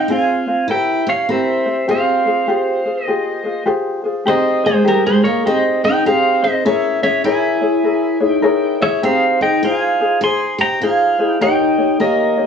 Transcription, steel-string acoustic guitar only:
0.08 0.64 F4 medium
0.68 1.03 E4 medium
1.06 1.27 C#4 medium
1.29 1.84 C4 medium
1.89 3.04 C4 medium
3.04 3.63 A#3 medium
4.28 4.62 C4 medium
4.66 4.85 G#3 medium
4.88 5.04 G3 medium
5.06 5.23 G#3 medium
5.25 5.45 A#3 medium
5.47 5.81 C4 medium
5.84 6.04 D#4 medium
6.06 6.40 C4 medium
6.44 6.63 C4 medium
6.66 7.00 C#4 medium
7.03 7.23 C#4 medium
7.24 8.22 E4 medium
8.22 8.76 D#4 medium
8.82 9.01 C#4 medium
9.03 9.38 C4 medium
9.41 9.61 D#4 medium
9.63 10.18 F4 medium
10.21 10.56 G#4 medium
10.58 10.79 G4 medium
10.81 11.21 F4 medium
11.21 11.37 E4 medium
11.41 11.96 D#4 medium
12.00 12.46 A#3 medium

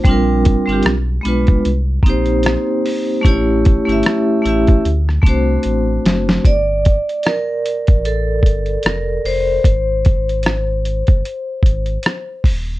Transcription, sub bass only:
0.05 0.58 A#1 loud
0.68 0.82 G1 loud
0.85 1.19 B1 loud
1.26 1.59 B1 medium
1.66 1.99 C2 loud
2.03 2.57 A#1 medium
3.25 3.78 A1 loud
3.88 4.02 G1 loud
4.45 4.79 A1 loud
4.85 5.19 D2 loud
5.23 5.58 C2 medium
5.65 5.99 A1 medium
6.05 6.39 F#1 loud
6.45 6.98 G1 loud
7.89 8.45 A1 medium
8.43 8.78 G1 medium
8.85 9.19 F1 loud
9.25 9.59 F1 medium
9.65 11.03 G#1 loud
11.08 11.23 G1 medium
11.63 11.98 G#1 loud
12.44 12.79 D#1 medium

